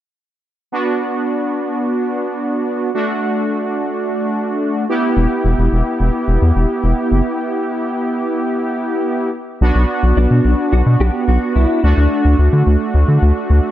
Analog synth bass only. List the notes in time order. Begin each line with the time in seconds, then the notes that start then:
5.17 E1
5.45 E1
5.59 E1
5.73 E1
6.00 E1
6.28 E1
6.42 E2
6.56 E1
6.84 E1
7.12 F#1
9.61 B1
9.75 B1
10.03 B1
10.17 B1
10.31 B2
10.45 B1
10.73 B1
10.86 B2
11.00 B1
11.28 B1
11.56 C2
11.84 D2
11.97 D2
12.25 D2
12.39 D2
12.53 D3
12.67 D2
12.94 D2
13.08 D3
13.22 D2
13.50 D2